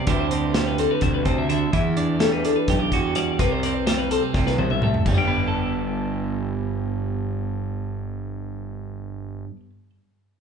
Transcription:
0.07 0.85 D2 medium
0.07 1.25 D3 medium
0.07 0.54 G3 medium
0.07 0.30 C4 medium
0.07 2.00 E4 medium
0.07 2.69 G4 medium
0.07 0.20 B4 medium
0.07 kick loud
0.07 closed hi-hat medium
0.20 0.32 C5 medium
0.31 0.78 C4 medium
0.31 0.44 D5 medium
0.31 closed hi-hat medium
0.44 0.55 B4 medium
0.54 2.20 G3 medium
0.54 0.66 C5 medium
0.54 snare medium
0.54 closed hi-hat medium
0.67 0.79 B4 medium
0.78 1.71 C4 medium
0.78 0.91 A4 medium
0.78 closed hi-hat medium
0.91 1.02 B4 medium
1.01 1.22 D2 medium
1.01 1.26 B2 medium
1.01 1.14 C5 medium
1.01 kick medium
1.01 closed hi-hat medium
1.14 1.25 B4 medium
1.25 1.65 D2 loud
1.25 1.49 C3 medium
1.25 1.38 C5 medium
1.25 kick medium
1.25 closed hi-hat soft
1.38 1.48 E5 medium
1.49 1.73 D3 medium
1.49 1.72 E5 medium
1.49 closed hi-hat medium
1.73 2.51 E2 medium
1.73 3.37 E3 medium
1.73 1.97 E5 medium
1.73 kick loud
1.73 closed hi-hat medium
1.97 2.44 D4 medium
1.97 2.21 D5 medium
1.97 closed hi-hat medium
2.20 3.16 G3 medium
2.20 2.32 A4 medium
2.20 snare medium
2.20 closed hi-hat medium
2.33 2.44 B4 medium
2.44 3.37 D4 medium
2.44 2.56 A4 medium
2.44 closed hi-hat medium
2.56 2.79 B4 medium
2.68 2.87 B1 medium
2.68 5.07 G4 medium
2.68 kick medium
2.68 closed hi-hat medium
2.79 2.92 D5 medium
2.92 3.31 E2 medium
2.92 3.37 F#4 medium
2.92 3.15 B4 medium
2.92 kick medium
2.92 closed hi-hat medium
3.15 3.87 G3 medium
3.15 3.40 D5 medium
3.15 closed hi-hat medium
3.39 4.18 C2 medium
3.39 4.34 C3 medium
3.39 3.51 B4 medium
3.39 kick medium
3.39 closed hi-hat medium
3.51 3.63 C5 medium
3.63 4.11 C4 soft
3.63 3.75 D5 medium
3.63 closed hi-hat medium
3.75 3.86 B4 medium
3.87 5.03 G3 medium
3.87 3.98 C5 medium
3.87 snare loud
3.87 closed hi-hat medium
3.98 4.10 B4 medium
4.11 5.04 C4 medium
4.11 4.23 A4 medium
4.11 closed hi-hat medium
4.23 4.35 B4 medium
4.34 4.54 C2 medium
4.34 4.59 C3 medium
4.34 4.46 C5 medium
4.34 kick medium
4.34 snare soft
4.46 4.58 B4 medium
4.46 snare soft
4.58 4.97 C2 medium
4.58 4.83 B2 medium
4.58 4.70 C5 medium
4.58 high tom medium
4.70 4.82 E5 medium
4.70 mid tom medium
4.82 5.06 A2 medium
4.82 5.06 E5 medium
4.82 mid tom medium
4.94 floor tom medium
5.05 9.44 G1 medium
5.05 9.49 G2 medium
5.05 kick medium
5.05 floor tom medium
5.05 crash medium
5.10 5.14 B4 medium
5.14 9.60 G3 medium
5.14 9.57 D5 medium
5.14 9.56 G5 medium
5.27 9.70 B3 medium
5.48 9.90 A4 soft

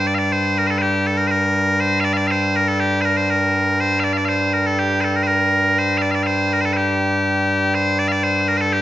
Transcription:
0.00 8.82 G2 medium
0.00 8.82 G3 medium
0.07 0.15 D5 medium
0.15 0.32 D5 medium
0.15 0.19 F5 medium
0.32 0.58 C5 medium
0.58 0.67 A#4 medium
0.67 0.78 A4 medium
0.67 0.70 C5 medium
0.78 1.07 G4 medium
0.78 0.82 C5 medium
1.07 1.17 A4 medium
1.17 1.27 A#4 medium
1.27 1.80 A#4 medium
1.27 1.31 C5 medium
1.80 2.00 C5 loud
2.00 2.05 F5 medium
2.05 2.13 D5 medium
2.13 2.27 D5 medium
2.13 2.17 F5 medium
2.27 2.56 C5 medium
2.27 2.31 F5 medium
2.56 2.68 A#4 medium
2.68 2.80 A4 medium
2.80 3.01 G4 medium
3.01 3.17 A#4 medium
3.01 3.05 C5 medium
3.17 3.30 C5 medium
3.30 3.80 A#4 medium
3.80 4.00 C5 loud
4.00 4.04 F5 medium
4.04 4.13 D5 medium
4.13 4.17 F5 medium
4.17 4.25 D5 medium
4.25 4.53 C5 medium
4.25 4.29 F5 medium
4.53 4.66 A#4 medium
4.66 4.79 A4 medium
4.79 5.01 G4 medium
5.01 5.16 A4 medium
5.01 5.04 C5 medium
5.16 5.23 A#4 medium
5.23 5.27 C5 medium
5.27 5.79 A#4 medium
5.79 5.98 C5 medium
5.98 6.02 F5 medium
6.02 6.11 D5 medium
6.11 6.23 D5 medium
6.11 6.15 F5 medium
6.23 6.53 C5 medium
6.23 6.27 F5 medium
6.53 6.61 A#4 medium
6.61 6.65 C5 medium
6.65 6.73 A4 medium
6.73 7.75 G4 medium
6.73 6.77 C5 medium
7.75 7.99 C5 loud
7.99 8.08 D5 medium
8.08 8.23 D5 medium
8.08 8.12 F5 medium
8.23 8.48 C5 medium
8.48 8.57 A#4 medium
8.57 8.73 A4 medium
8.57 8.61 C5 medium
8.73 8.82 G4 medium

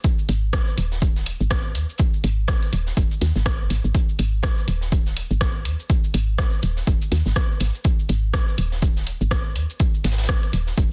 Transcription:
0.04 kick loud
0.04 closed hi-hat medium
0.04 shaker medium
0.19 shaker soft
0.29 0.74 G#1 loud
0.29 closed hi-hat loud
0.29 closed hi-hat medium
0.53 kick loud
0.53 cross-stick loud
0.53 snare loud
0.53 closed hi-hat medium
0.53 shaker medium
0.67 closed hi-hat soft
0.67 shaker soft
0.78 1.35 D#1 medium
0.78 closed hi-hat medium
0.92 snare medium
0.92 shaker soft
1.02 kick loud
1.02 closed hi-hat loud
1.02 shaker medium
1.16 snare soft
1.16 shaker soft
1.26 closed hi-hat medium
1.41 1.77 G#1 medium
1.41 shaker soft
1.50 kick loud
1.50 cross-stick medium
1.50 snare loud
1.50 closed hi-hat medium
1.50 shaker medium
1.75 1.86 D#2 medium
1.75 closed hi-hat medium
1.75 closed hi-hat loud
1.89 shaker soft
1.98 kick loud
1.98 closed hi-hat medium
1.98 shaker medium
2.14 shaker soft
2.24 2.69 G#1 loud
2.24 closed hi-hat loud
2.24 closed hi-hat medium
2.48 kick loud
2.48 cross-stick medium
2.48 snare loud
2.48 closed hi-hat medium
2.48 shaker medium
2.62 closed hi-hat soft
2.62 shaker soft
2.73 2.92 D#1 medium
2.73 closed hi-hat medium
2.87 snare medium
2.87 shaker soft
2.97 3.08 F#1 medium
2.97 kick loud
2.97 closed hi-hat medium
2.97 shaker medium
3.11 closed hi-hat soft
3.11 shaker soft
3.21 3.32 D#2 loud
3.21 snare soft
3.21 closed hi-hat medium
3.21 closed hi-hat loud
3.36 3.62 G#1 medium
3.36 snare soft
3.36 shaker soft
3.46 kick loud
3.46 cross-stick medium
3.46 snare loud
3.46 closed hi-hat medium
3.46 shaker medium
3.60 3.68 F#1 loud
3.70 3.81 G#1 medium
3.70 snare soft
3.70 closed hi-hat loud
3.70 closed hi-hat medium
3.84 3.92 G#1 medium
3.84 shaker soft
3.95 kick loud
3.95 closed hi-hat medium
3.95 shaker medium
4.09 shaker soft
4.19 4.64 G#1 loud
4.19 closed hi-hat medium
4.19 closed hi-hat loud
4.43 kick loud
4.43 cross-stick medium
4.43 snare loud
4.43 closed hi-hat medium
4.43 shaker medium
4.58 closed hi-hat soft
4.58 shaker soft
4.68 5.25 D#1 medium
4.68 closed hi-hat medium
4.81 snare medium
4.81 shaker soft
4.92 kick loud
4.92 closed hi-hat medium
4.92 shaker medium
5.06 snare soft
5.06 shaker soft
5.17 closed hi-hat medium
5.31 5.67 G#1 medium
5.31 shaker soft
5.41 kick loud
5.41 cross-stick medium
5.41 snare loud
5.41 closed hi-hat medium
5.41 shaker medium
5.65 5.76 D#2 medium
5.65 closed hi-hat medium
5.79 shaker soft
5.90 kick loud
5.90 closed hi-hat medium
5.90 shaker medium
6.04 shaker soft
6.14 6.59 G#1 loud
6.14 closed hi-hat medium
6.38 kick loud
6.38 cross-stick medium
6.38 snare loud
6.38 closed hi-hat medium
6.38 shaker medium
6.53 shaker soft
6.62 6.82 D#1 loud
6.62 closed hi-hat medium
6.77 snare soft
6.77 shaker soft
6.87 6.98 F#1 medium
6.87 kick loud
6.87 closed hi-hat medium
6.87 shaker medium
7.02 closed hi-hat soft
7.02 shaker soft
7.12 7.22 D#2 loud
7.12 snare soft
7.12 closed hi-hat medium
7.26 7.34 G#1 medium
7.26 snare soft
7.26 shaker soft
7.36 kick loud
7.36 cross-stick medium
7.36 snare loud
7.36 closed hi-hat medium
7.36 shaker medium
7.60 7.71 G#1 medium
7.60 snare soft
7.60 closed hi-hat medium
7.75 shaker soft
7.84 kick loud
7.84 closed hi-hat medium
7.84 shaker medium
7.99 shaker soft
8.09 8.54 G#1 loud
8.09 closed hi-hat medium
8.33 kick loud
8.33 cross-stick medium
8.33 snare loud
8.33 closed hi-hat medium
8.33 shaker medium
8.48 closed hi-hat soft
8.48 shaker soft
8.58 9.15 D#1 medium
8.58 closed hi-hat medium
8.72 snare medium
8.72 shaker soft
8.82 kick loud
8.82 closed hi-hat medium
8.82 shaker medium
8.97 snare soft
8.97 shaker soft
9.06 closed hi-hat medium
9.21 9.57 G#1 medium
9.21 shaker soft
9.31 kick loud
9.31 cross-stick medium
9.31 snare loud
9.31 closed hi-hat medium
9.31 shaker medium
9.56 9.66 D#2 medium
9.56 closed hi-hat medium
9.70 shaker soft
9.80 kick loud
9.80 closed hi-hat medium
9.80 shaker medium
9.94 shaker soft
10.04 10.49 G#1 loud
10.04 snare medium
10.04 closed hi-hat medium
10.12 snare medium
10.12 closed hi-hat medium
10.18 snare medium
10.18 closed hi-hat medium
10.18 shaker soft
10.23 snare medium
10.23 closed hi-hat medium
10.29 kick loud
10.29 cross-stick loud
10.29 snare loud
10.29 closed hi-hat loud
10.29 closed hi-hat soft
10.29 shaker medium
10.43 closed hi-hat soft
10.43 shaker soft
10.53 10.73 D#1 medium
10.53 closed hi-hat medium
10.67 snare soft
10.67 shaker soft
10.78 10.88 F#1 medium
10.78 kick loud
10.78 closed hi-hat medium
10.78 shaker medium

